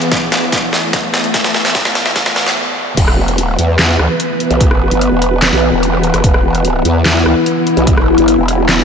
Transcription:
Already playing: E2 E3 A3
0.02 closed hi-hat
0.12 kick, snare, closed hi-hat
0.32 snare, open hi-hat
0.52 kick, snare, closed hi-hat
0.73 snare
0.93 kick, snare, closed hi-hat
1.14 snare, closed hi-hat
1.24 closed hi-hat
1.34 kick, snare, closed hi-hat
1.44 snare
1.54 snare
1.65 snare, closed hi-hat
1.75 kick, snare, closed hi-hat
1.85 snare
1.95 snare, open hi-hat
2.06 snare
2.16 kick, snare, closed hi-hat
2.26 snare
2.36 snare
2.46 snare
2.97 E1 E3 B3 B4, kick, closed hi-hat, crash
3.08 cross-stick
3.28 closed hi-hat
3.38 D#1, closed hi-hat
3.59 E2, open hi-hat
3.79 snare, clap, closed hi-hat
3.99 D2, cross-stick
4.20 closed hi-hat
4.40 closed hi-hat
4.51 B1, closed hi-hat
4.61 kick, closed hi-hat
4.71 F#1, cross-stick
4.91 G1, closed hi-hat
5.01 closed hi-hat
5.12 E1
5.22 open hi-hat
5.42 snare, clap, closed hi-hat
5.53 B1
5.73 E1
5.83 closed hi-hat
5.93 cross-stick
6.03 closed hi-hat
6.14 F#1, cross-stick, closed hi-hat
6.24 E1 E4, kick, closed hi-hat
6.34 cross-stick
6.55 closed hi-hat
6.65 closed hi-hat
6.85 E2, open hi-hat
7.05 snare, clap, closed hi-hat
7.26 D2, cross-stick
7.46 closed hi-hat
7.67 closed hi-hat
7.77 B1, closed hi-hat
7.87 kick, closed hi-hat
7.97 F#1, cross-stick
8.18 G1, closed hi-hat
8.28 closed hi-hat
8.38 E1
8.48 open hi-hat
8.69 snare, clap, closed hi-hat

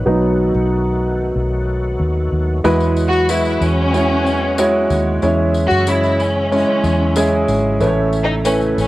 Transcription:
Already playing: D#3 F#3 F#4
0.06 B1 F#3 A3 B3 D#4
0.55 B1
1.36 B1
2.00 D#2
2.32 D#2
2.64 E2 E3 F#3 G#3 B3 E4 F#4 B4, tambourine
2.80 tambourine
2.96 tambourine
3.08 F#4
3.13 tambourine
3.29 G#3 E4 F#4 B4, tambourine
3.45 tambourine
3.61 E2 C#4, tambourine
3.93 G#3 E4 F#4 C#5, tambourine
4.26 tambourine
4.58 G#3 E4 F#4 C#5, tambourine
4.90 D#2, tambourine
5.22 E2 C#3 E3 G#3 C#4 E4 C#5, tambourine
5.54 tambourine
5.67 F#4, tambourine
5.71 F#2
5.87 G#3 C#4 E4 C#5, tambourine
6.03 tambourine
6.20 C#4, tambourine
6.52 G#3 C#4 E4 C#5, tambourine
6.84 E2, tambourine
7.16 G#3 C#4 E4 G#4, tambourine
7.48 G#1, tambourine
7.80 A1 A2 A3 C#4 E4 B4, tambourine
7.88 C#5
8.13 tambourine
8.24 D#4
8.45 A3 C#4 E4 B4, tambourine
8.61 tambourine
8.78 A1 C#4, tambourine

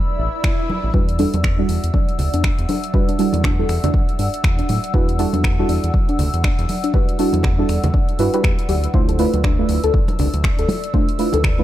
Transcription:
Already playing: A3 D4 E4 F4 B4 D5 B5 E6, swell
0.19 A1
0.44 finger snap, kick
0.70 high conga
0.84 A1
0.94 E2 G3 D4 E4 F#4 B4 F#5, kick
1.09 closed hi-hat
1.19 G3 D4 E4 F#4 A4, open hi-hat
1.34 E2, closed hi-hat, high conga
1.44 finger snap, kick
1.58 G3 D4 E4 F#4 A4
1.69 E2, open hi-hat
1.84 E2, closed hi-hat
1.94 D4, kick, high conga
2.09 closed hi-hat
2.19 D2, open hi-hat, low conga
2.34 E2 D4, closed hi-hat
2.44 finger snap, kick
2.59 E2, closed hi-hat
2.69 D4, open hi-hat, high conga
2.84 closed hi-hat
2.94 G3 D4 E4 F#4 B4, kick
3.09 D4, closed hi-hat
3.19 G3 D4 E4 F#4 A4, open hi-hat
3.33 E2, closed hi-hat, high conga
3.44 D4, finger snap, kick, low conga
3.58 G3 D4 E4 F#4 A4
3.69 E2, finger snap, open hi-hat
3.84 E2 D4, closed hi-hat, low conga
3.94 kick, high conga
4.09 closed hi-hat
4.19 G2 D4, open hi-hat
4.34 closed hi-hat
4.44 E2, finger snap, kick
4.59 D4, closed hi-hat
4.69 A2, open hi-hat, high conga
4.84 closed hi-hat
4.94 E2 G3 D4 E4 F#4 B4, kick
5.09 closed hi-hat
5.19 G3 D4 E4 F#4 A4, open hi-hat
5.33 E2 D4, closed hi-hat, high conga
5.44 finger snap, kick
5.58 G3 D4 E4 F#4 A4
5.69 E2 D4, open hi-hat
5.84 E2, closed hi-hat
5.94 kick, high conga
6.09 D4, closed hi-hat
6.19 D2, open hi-hat, low conga
6.34 E2, closed hi-hat
6.44 D4, finger snap, kick
6.59 E2, closed hi-hat
6.69 open hi-hat, high conga
6.84 D4, closed hi-hat
6.94 G3 D4 E4 F#4 B4, kick
7.09 closed hi-hat
7.19 G3 D4 E4 F#4 A4, open hi-hat
7.33 E2, closed hi-hat, high conga
7.43 finger snap, kick, low conga
7.58 G3 D4 E4 F#4 A4
7.69 E2, finger snap, open hi-hat
7.84 E2, closed hi-hat, low conga
7.94 D4, kick, high conga
8.09 closed hi-hat
8.19 G2 G3 D4 E4 F#4 B4, open hi-hat
8.33 G3 D4 E4 F#4 G4 B4, closed hi-hat
8.44 E2, finger snap, kick
8.59 closed hi-hat
8.69 D2 G4, open hi-hat, high conga
8.84 closed hi-hat
8.94 D2 A3 D4 E4 F4 C5 D5 E6, kick
9.09 A4, closed hi-hat, muted conga
9.19 A3 D4 E4 F4 B4, open hi-hat
9.34 D2, closed hi-hat, high conga
9.44 D4, finger snap, kick, muted conga
9.58 A3 D4 E4 F4 B4
9.69 D2, open hi-hat, muted conga
9.84 D2 A4, closed hi-hat
9.94 kick, high conga
10.08 closed hi-hat, muted conga
10.19 C2 D4, open hi-hat, low conga
10.34 D2, closed hi-hat, muted conga
10.44 finger snap, kick
10.59 D2 A4, closed hi-hat
10.69 open hi-hat, muted conga, high conga
10.84 closed hi-hat
10.94 A3 D4 E4 F4 C5, kick, muted conga
11.09 closed hi-hat
11.19 A3 D4 E4 F4 B4, open hi-hat
11.33 D2 A4, closed hi-hat, muted conga, high conga
11.44 finger snap, kick, low conga
11.58 A3 D4 E4 F4 B4, muted conga

